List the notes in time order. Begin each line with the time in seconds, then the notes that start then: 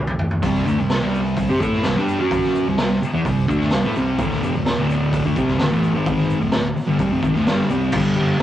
Already playing: C2
0.07 mid tom
0.19 F1, floor tom
0.31 floor tom
0.42 C2 C3 G3 C4, kick, open hi-hat, splash, shaker
0.54 snare
0.67 D2 D3 A3, shaker
0.78 C2 C3 G3
0.90 snare, open hi-hat, shaker
1.01 C2 C3 G3 C4
1.14 shaker
1.26 shaker
1.37 kick, open hi-hat, shaker
1.49 C3 C4 G4
1.60 A2 A3 E4 A4, kick, shaker
1.73 snare
1.83 C2 C3 G3, snare, open hi-hat, shaker
1.95 G2 G3 D4 G4
2.08 shaker
2.19 F#2 F#3 C#4 F#4
2.31 kick, open hi-hat, shaker
2.44 snare
2.55 shaker
2.66 C2 C3 G3, shaker
2.78 C2 C3 G3, snare, open hi-hat, shaker
3.02 muted distorted electric guitar stroke, shaker
3.14 E2 E3 B3, shaker
3.25 C2 C3 G3, kick, open hi-hat, shaker
3.48 D2 D3 A3 D4, kick, shaker
3.60 snare
3.71 C2 C3 G3, snare, open hi-hat, shaker
3.85 A2 A3 E4
3.96 C2 C3 G3 C4, shaker
4.18 D1 D2 A2 D3, kick, open hi-hat, shaker
4.30 snare
4.43 F1 F2 C3, shaker
4.54 D1 D2 A2, shaker
4.66 snare, open hi-hat, shaker
4.77 D1 D2 A2 D3
4.90 shaker
5.03 shaker
5.13 kick, open hi-hat, shaker
5.24 D2 D3 A3
5.36 C2 C3 G3 C4, kick, shaker
5.47 snare
5.59 D1 D2 A2, snare, open hi-hat, shaker
5.71 A1 A2 E3 A3
5.83 shaker
5.94 G#1 G#2 D#3 G#3
6.06 kick, open hi-hat, shaker
6.17 snare
6.30 shaker
6.41 D1 D2 A2, shaker
6.52 D1 D2 A2, snare, open hi-hat, shaker
6.76 muted picked electric bass stroke, muted distorted electric guitar stroke, shaker
6.87 G1 G2 D3
6.99 C2 C3 G3, kick, open hi-hat, shaker
7.10 F1 F2 C3
7.23 G#1 G#2 D#3, kick, shaker
7.34 D1 D2 A2, snare
7.45 G1 G2 D3 G3, snare, open hi-hat, shaker
7.69 C2 C3 G3 C4, shaker
7.82 shaker
7.92 G1 G2 D3, kick, crash
7.97 G3
8.16 G1 G3
8.21 D3
8.38 G2